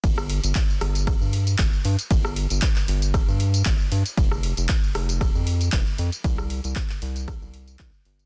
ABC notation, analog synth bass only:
X:1
M:4/4
L:1/16
Q:"Swing 16ths" 1/4=116
K:Clyd
V:1 name="Analog synth bass" clef=bass
G,,,3 G,,, z2 G,,,3 G,,3 G,,, z G,, z | G,,,3 G,,, z2 G,,,3 G,,3 G,,, z G,, z | =F,,,3 F,,, z2 F,,,3 =F,,3 F,,, z F,, z | C,,3 C,, z2 C,,3 C,,3 C,, z G,,,2 |]